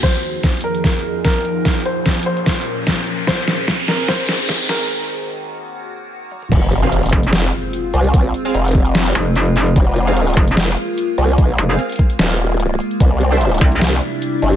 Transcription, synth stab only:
X:1
M:4/4
L:1/16
Q:"Swing 16ths" 1/4=148
K:Fm
V:1 name="Synth stab"
z16 | z16 | z16 | z16 |
z3 [CAf] z12 | z3 [CAf] z12 | z3 [CAf] z12 | z3 [CAf] z12 |
z3 [=Dc=e] z12 |]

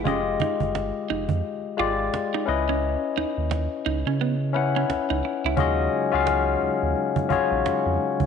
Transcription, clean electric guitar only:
X:1
M:4/4
L:1/16
Q:"Swing 16ths" 1/4=87
K:Db
V:1 name="Clean electric guitar"
D z E z3 E z3 F z2 E z D | z2 E z3 E D _C z2 D z E z _F | [K:Ebm] z16 |]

